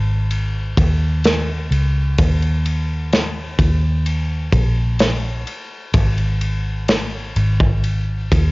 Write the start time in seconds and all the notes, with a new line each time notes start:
Already playing: G#1
0.31 ride
0.77 D#2, kick, ride
1.24 snare, ride
1.71 C#2, ride
2.18 D#2, kick, ride
2.42 ride
2.66 ride
3.13 snare, ride
3.59 D#2, kick, ride
4.06 ride
4.52 A#1, kick, ride
4.99 snare, ride
5.47 ride
5.94 G#1, kick, ride
6.18 ride
6.41 ride
6.88 snare, ride
7.36 G#1, ride
7.60 kick
7.84 ride
8.31 D#2, kick, ride